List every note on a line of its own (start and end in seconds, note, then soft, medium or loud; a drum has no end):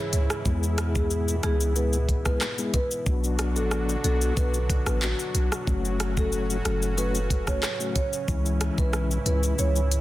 0.00 3.02 G#2 medium
0.00 0.42 C#3 medium
0.00 3.02 E3 medium
0.00 0.42 C#4 medium
0.00 3.02 E4 medium
0.00 0.27 G#4 medium
0.13 0.28 C#2 medium
0.13 closed hi-hat medium
0.13 shaker medium
0.30 cross-stick loud
0.30 shaker medium
0.45 1.39 E2 loud
0.45 3.04 B2 medium
0.45 1.36 G#3 medium
0.45 1.36 B3 medium
0.45 3.04 B3 medium
0.45 1.36 E4 medium
0.45 1.36 G#4 loud
0.45 kick loud
0.45 shaker medium
0.63 shaker medium
0.78 cross-stick loud
0.78 closed hi-hat medium
0.78 shaker medium
0.95 1.07 G#4 medium
0.95 kick loud
0.95 shaker medium
1.10 shaker medium
1.28 shaker medium
1.43 2.37 C#2 loud
1.43 1.73 G#3 medium
1.43 1.73 B3 medium
1.43 1.74 E4 medium
1.43 1.56 G#4 medium
1.43 1.74 G#4 medium
1.43 cross-stick loud
1.43 closed hi-hat medium
1.43 shaker medium
1.61 shaker medium
1.76 1.98 G#3 medium
1.76 1.98 B3 medium
1.76 1.98 E4 medium
1.76 1.98 G#4 loud
1.76 1.89 B4 medium
1.76 shaker medium
1.93 shaker medium
2.09 kick medium
2.09 closed hi-hat medium
2.09 shaker soft
2.25 2.46 G#3 medium
2.25 2.46 B3 medium
2.25 2.47 E4 medium
2.25 2.47 G#4 medium
2.25 2.37 B4 medium
2.25 kick medium
2.25 cross-stick medium
2.25 shaker medium
2.41 cross-stick medium
2.41 clap medium
2.41 shaker medium
2.58 2.79 G#3 medium
2.58 2.79 B3 medium
2.58 2.79 E4 medium
2.58 2.79 G#4 medium
2.58 shaker medium
2.74 2.87 B4 medium
2.74 kick loud
2.74 closed hi-hat medium
2.74 shaker soft
2.91 shaker medium
3.06 3.58 B1 loud
3.06 5.65 B2 medium
3.06 5.65 D3 medium
3.06 3.97 F#3 medium
3.06 8.24 F#3 medium
3.06 3.97 B3 medium
3.06 5.65 D4 medium
3.06 3.97 D4 medium
3.06 5.65 F#4 medium
3.06 3.97 F#4 loud
3.06 kick loud
3.06 shaker medium
3.24 shaker medium
3.39 cross-stick loud
3.39 closed hi-hat medium
3.39 shaker medium
3.56 3.97 A1 medium
3.56 3.68 A4 medium
3.56 shaker medium
3.71 cross-stick medium
3.71 shaker medium
3.89 shaker medium
4.04 4.32 B1 loud
4.04 4.34 F#3 medium
4.04 4.34 B3 medium
4.04 4.34 D4 medium
4.04 4.34 F#4 medium
4.04 4.17 A4 medium
4.04 closed hi-hat medium
4.04 shaker medium
4.21 shaker medium
4.37 4.79 B1 loud
4.37 4.59 F#3 medium
4.37 4.59 B3 medium
4.37 4.59 D4 medium
4.37 4.59 F#4 loud
4.37 4.50 B4 medium
4.37 kick loud
4.37 shaker medium
4.54 shaker medium
4.70 kick medium
4.70 closed hi-hat medium
4.70 shaker soft
4.86 5.14 A1 medium
4.86 5.07 F#3 medium
4.86 5.07 B3 medium
4.86 5.07 D4 medium
4.86 5.08 F#4 medium
4.86 4.98 B4 medium
4.86 cross-stick medium
4.86 shaker medium
5.02 5.49 F#4 medium
5.02 clap medium
5.02 shaker medium
5.19 shaker medium
5.35 5.49 B1 loud
5.35 closed hi-hat medium
5.35 shaker medium
5.52 cross-stick medium
5.52 shaker medium
5.67 6.61 F#1 loud
5.67 8.26 A2 medium
5.67 10.01 C#3 medium
5.67 6.58 F#3 medium
5.67 6.58 A3 medium
5.67 10.01 C#4 medium
5.67 6.58 C#4 medium
5.67 8.26 F#4 medium
5.67 6.58 F#4 loud
5.67 kick loud
5.67 shaker medium
5.85 shaker medium
6.00 cross-stick loud
6.00 closed hi-hat medium
6.00 shaker medium
6.17 6.29 A4 medium
6.17 kick loud
6.17 shaker medium
6.32 shaker medium
6.50 shaker medium
6.65 7.59 F#1 medium
6.65 6.95 F#3 medium
6.65 6.95 A3 medium
6.65 6.95 C#4 medium
6.65 6.95 F#4 medium
6.65 6.78 A4 medium
6.65 cross-stick loud
6.65 closed hi-hat medium
6.65 shaker medium
6.82 shaker medium
6.97 7.20 F#3 medium
6.97 7.20 A3 medium
6.97 7.20 C#4 medium
6.97 7.20 F#4 loud
6.97 7.11 B4 medium
6.97 shaker loud
7.15 shaker medium
7.30 kick medium
7.30 closed hi-hat medium
7.30 shaker medium
7.47 7.68 F#3 medium
7.47 7.68 A3 medium
7.47 7.68 C#4 medium
7.47 7.68 F#4 medium
7.47 7.59 C#5 medium
7.47 kick medium
7.47 cross-stick loud
7.47 shaker medium
7.63 cross-stick medium
7.63 clap medium
7.63 shaker medium
7.80 8.01 F#3 medium
7.80 8.01 A3 medium
7.80 8.01 C#4 medium
7.80 8.01 F#4 medium
7.80 shaker medium
7.96 8.08 C#5 medium
7.96 kick loud
7.96 closed hi-hat medium
7.96 shaker medium
8.13 shaker medium
8.28 8.70 C#2 loud
8.28 10.01 G#2 medium
8.28 9.18 E3 medium
8.28 10.01 E3 medium
8.28 9.19 G#3 medium
8.28 9.19 C#4 medium
8.28 10.01 E4 medium
8.28 9.19 E4 loud
8.28 kick loud
8.28 shaker medium
8.46 shaker medium
8.61 cross-stick loud
8.61 closed hi-hat medium
8.61 shaker medium
8.78 9.19 B1 loud
8.78 8.89 B4 medium
8.78 kick loud
8.78 shaker medium
8.93 cross-stick medium
8.93 shaker medium
9.11 shaker medium
9.26 9.53 C#2 medium
9.26 9.56 E3 medium
9.26 9.56 G#3 medium
9.26 9.56 C#4 medium
9.26 9.56 E4 medium
9.26 9.39 B4 medium
9.26 closed hi-hat medium
9.26 shaker medium
9.43 shaker medium
9.58 10.01 C#2 loud
9.58 9.80 E3 medium
9.58 9.80 G#3 medium
9.58 9.81 C#4 medium
9.58 9.81 E4 loud
9.58 9.71 C#5 medium
9.58 shaker loud
9.76 shaker medium
9.92 closed hi-hat medium
9.92 shaker soft